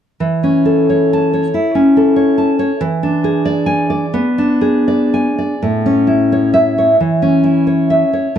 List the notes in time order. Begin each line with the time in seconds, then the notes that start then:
0.20 E3
0.44 C#4
0.65 A4
0.90 C#5
1.13 A5
1.33 C#5
1.54 E4
1.75 C#4
1.97 A4
2.16 C#5
2.38 A5
2.59 C#5
2.81 E3
3.03 D4
3.24 G#4
3.45 D5
3.66 G#5
3.90 D5
4.14 B3
4.38 D4
4.61 G#4
4.88 D5
5.14 G#5
5.38 D5
5.63 A2
5.86 C#4
6.07 E4
6.32 C#5
6.54 E5
6.78 C#5
7.01 E3
7.22 C#4
7.44 E4
7.67 C#5
7.90 E5
8.13 C#5